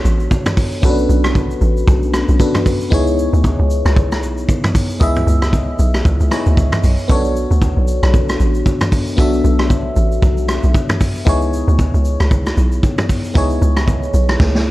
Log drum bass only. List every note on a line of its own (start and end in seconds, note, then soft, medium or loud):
0.05 0.28 A1 medium
0.83 1.06 B1 loud
1.09 1.56 B1 loud
1.61 1.85 A1 loud
1.87 2.24 B1 loud
2.29 2.38 B1 medium
2.92 3.29 C#2 loud
3.33 3.56 D2 loud
3.59 3.82 C#2 medium
3.85 4.24 C#2 medium
4.22 4.46 B1 loud
5.01 5.24 C#2 loud
5.27 5.73 C#2 loud
5.79 6.02 B1 medium
6.05 6.19 C#2 loud
6.20 6.30 C#2 medium
6.46 6.56 D2 medium
6.57 6.71 C#2 medium
6.84 6.97 B1 loud
7.09 7.46 B1 loud
7.51 7.74 D2 medium
7.77 8.00 B1 medium
8.03 8.36 B1 medium
8.40 8.63 A1 medium
9.18 9.41 B1 loud
9.44 9.91 B1 loud
9.96 10.20 A1 loud
10.22 10.59 B1 loud
10.64 10.73 B1 medium
11.27 11.63 C#2 loud
11.68 11.91 D2 loud
11.94 12.17 C#2 medium
12.20 12.53 C#2 medium
12.57 12.80 B1 medium
13.35 13.59 C#2 loud
13.62 14.08 C#2 loud
14.14 14.37 B1 loud
14.40 14.71 C#2 loud